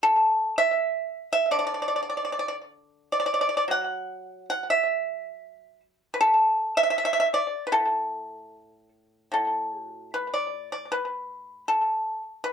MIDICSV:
0, 0, Header, 1, 2, 480
1, 0, Start_track
1, 0, Tempo, 748130
1, 22, Time_signature, 2, 2, 24, 8
1, 983, Tempo, 786370
1, 2903, Tempo, 765306
1, 4823, Tempo, 800000
1, 6263, Tempo, 769231
1, 7754, End_track
2, 0, Start_track
2, 0, Title_t, "Pipa"
2, 0, Program_c, 0, 105
2, 19, Note_on_c, 0, 69, 91
2, 352, Note_off_c, 0, 69, 0
2, 372, Note_on_c, 0, 76, 100
2, 832, Note_off_c, 0, 76, 0
2, 851, Note_on_c, 0, 76, 94
2, 969, Note_off_c, 0, 76, 0
2, 969, Note_on_c, 0, 50, 58
2, 972, Note_on_c, 0, 74, 85
2, 1009, Note_off_c, 0, 74, 0
2, 1017, Note_on_c, 0, 74, 62
2, 1057, Note_off_c, 0, 74, 0
2, 1065, Note_on_c, 0, 74, 63
2, 1104, Note_off_c, 0, 74, 0
2, 1111, Note_on_c, 0, 74, 53
2, 1151, Note_off_c, 0, 74, 0
2, 1158, Note_on_c, 0, 74, 55
2, 1188, Note_off_c, 0, 74, 0
2, 1195, Note_on_c, 0, 74, 48
2, 1236, Note_off_c, 0, 74, 0
2, 1243, Note_on_c, 0, 74, 52
2, 1277, Note_off_c, 0, 74, 0
2, 1284, Note_on_c, 0, 74, 46
2, 1320, Note_off_c, 0, 74, 0
2, 1327, Note_on_c, 0, 74, 57
2, 1365, Note_off_c, 0, 74, 0
2, 1372, Note_on_c, 0, 74, 49
2, 1412, Note_off_c, 0, 74, 0
2, 1419, Note_on_c, 0, 74, 55
2, 1459, Note_off_c, 0, 74, 0
2, 1466, Note_on_c, 0, 74, 51
2, 1500, Note_off_c, 0, 74, 0
2, 1508, Note_on_c, 0, 74, 60
2, 1556, Note_off_c, 0, 74, 0
2, 1563, Note_on_c, 0, 74, 54
2, 1609, Note_off_c, 0, 74, 0
2, 1954, Note_on_c, 0, 74, 77
2, 1992, Note_off_c, 0, 74, 0
2, 1999, Note_on_c, 0, 74, 60
2, 2030, Note_off_c, 0, 74, 0
2, 2038, Note_on_c, 0, 74, 69
2, 2078, Note_off_c, 0, 74, 0
2, 2085, Note_on_c, 0, 74, 55
2, 2122, Note_off_c, 0, 74, 0
2, 2129, Note_on_c, 0, 74, 67
2, 2170, Note_off_c, 0, 74, 0
2, 2177, Note_on_c, 0, 74, 58
2, 2219, Note_off_c, 0, 74, 0
2, 2226, Note_on_c, 0, 74, 66
2, 2266, Note_off_c, 0, 74, 0
2, 2293, Note_on_c, 0, 54, 53
2, 2301, Note_off_c, 0, 50, 0
2, 2313, Note_on_c, 0, 78, 90
2, 2763, Note_off_c, 0, 78, 0
2, 2794, Note_on_c, 0, 78, 91
2, 2899, Note_off_c, 0, 78, 0
2, 2917, Note_on_c, 0, 76, 84
2, 3607, Note_off_c, 0, 76, 0
2, 3736, Note_off_c, 0, 54, 0
2, 3819, Note_on_c, 0, 71, 73
2, 3859, Note_off_c, 0, 71, 0
2, 3861, Note_on_c, 0, 69, 91
2, 4194, Note_off_c, 0, 69, 0
2, 4216, Note_on_c, 0, 76, 101
2, 4247, Note_off_c, 0, 76, 0
2, 4255, Note_on_c, 0, 76, 81
2, 4291, Note_off_c, 0, 76, 0
2, 4299, Note_on_c, 0, 76, 85
2, 4339, Note_off_c, 0, 76, 0
2, 4347, Note_on_c, 0, 76, 85
2, 4383, Note_off_c, 0, 76, 0
2, 4391, Note_on_c, 0, 76, 91
2, 4434, Note_off_c, 0, 76, 0
2, 4441, Note_on_c, 0, 76, 83
2, 4476, Note_off_c, 0, 76, 0
2, 4484, Note_on_c, 0, 76, 84
2, 4531, Note_off_c, 0, 76, 0
2, 4572, Note_on_c, 0, 74, 98
2, 4761, Note_off_c, 0, 74, 0
2, 4778, Note_on_c, 0, 71, 66
2, 4811, Note_on_c, 0, 45, 63
2, 4813, Note_on_c, 0, 69, 87
2, 4822, Note_off_c, 0, 71, 0
2, 5511, Note_off_c, 0, 69, 0
2, 5762, Note_off_c, 0, 45, 0
2, 5769, Note_on_c, 0, 45, 50
2, 5781, Note_on_c, 0, 69, 60
2, 6087, Note_off_c, 0, 69, 0
2, 6087, Note_on_c, 0, 66, 60
2, 6238, Note_off_c, 0, 66, 0
2, 6263, Note_on_c, 0, 71, 62
2, 6377, Note_off_c, 0, 71, 0
2, 6386, Note_on_c, 0, 74, 62
2, 6610, Note_off_c, 0, 74, 0
2, 6627, Note_on_c, 0, 74, 68
2, 6738, Note_off_c, 0, 74, 0
2, 6748, Note_on_c, 0, 71, 75
2, 7203, Note_off_c, 0, 71, 0
2, 7220, Note_off_c, 0, 45, 0
2, 7225, Note_on_c, 0, 69, 70
2, 7561, Note_off_c, 0, 69, 0
2, 7698, Note_on_c, 0, 71, 77
2, 7754, Note_off_c, 0, 71, 0
2, 7754, End_track
0, 0, End_of_file